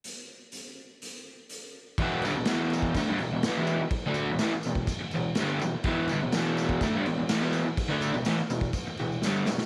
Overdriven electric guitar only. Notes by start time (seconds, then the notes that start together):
2.00 E2 B2 E3
2.24 G2 D3
2.36 E2 B2
2.47 E2 B2 E3
2.97 D3 A3
3.09 G2 D3
3.21 E2 B2
3.33 E2 B2
3.46 A2 E3
3.58 E2 B2 E3
3.82 muted overdriven electric guitar stroke
4.06 D3 A3 D4
4.31 E2 B2
4.40 A2 E3
4.54 muted overdriven electric guitar stroke
4.66 E2 B2
5.01 muted overdriven electric guitar stroke
5.15 E2 B2
5.39 G2 D3 G3
5.61 E2 B2
5.74 muted overdriven electric guitar stroke
5.85 E2 B2 E3
6.10 G2 D3
6.23 E2 B2
6.35 E2 B2 E3
6.83 D3 A3
6.95 G2 D3
7.07 E2 B2
7.18 E2 B2
7.30 A2 E3
7.41 E2 B2 E3
7.67 muted overdriven electric guitar stroke
7.89 D3 A3 D4
8.14 E2 B2
8.27 A2 E3
8.39 muted overdriven electric guitar stroke
8.51 E2 B2
8.87 muted overdriven electric guitar stroke
9.00 E2 B2
9.24 G2 D3 G3
9.48 E2 B2
9.60 muted overdriven electric guitar stroke